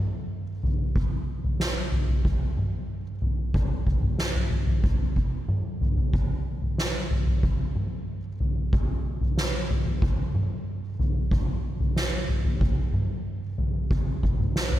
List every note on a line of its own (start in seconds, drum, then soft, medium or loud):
0.63 floor tom medium
0.95 kick medium
0.95 floor tom medium
1.44 floor tom medium
1.60 snare medium
1.92 floor tom medium
2.08 floor tom medium
2.25 kick medium
2.25 floor tom medium
2.57 mid tom medium
3.22 floor tom medium
3.54 kick medium
3.54 floor tom medium
3.87 kick soft
3.87 floor tom medium
4.03 floor tom medium
4.03 mid tom medium
4.19 snare medium
4.35 floor tom medium
4.51 floor tom medium
4.67 floor tom medium
4.84 kick medium
4.84 floor tom medium
5.16 kick medium
5.48 mid tom medium
5.81 floor tom medium
5.97 floor tom medium
6.13 kick medium
6.13 floor tom medium
6.62 floor tom medium
6.78 snare medium
7.11 floor tom medium
7.27 floor tom medium
7.43 kick medium
7.43 floor tom medium
7.75 mid tom medium
8.40 floor tom medium
8.73 kick medium
8.73 floor tom medium
9.21 floor tom medium
9.37 snare medium
9.71 floor tom medium
9.86 floor tom medium
10.02 kick medium
10.02 floor tom medium
10.35 mid tom medium
10.99 floor tom medium
11.31 kick medium
11.31 floor tom medium
11.80 floor tom medium
11.96 snare medium
12.29 floor tom medium
12.45 floor tom medium
12.61 kick medium
12.61 floor tom medium
12.93 mid tom medium
13.58 floor tom medium
13.90 kick medium
13.90 floor tom medium
14.23 kick medium
14.23 floor tom medium
14.39 floor tom medium
14.39 mid tom medium
14.56 snare medium
14.72 floor tom medium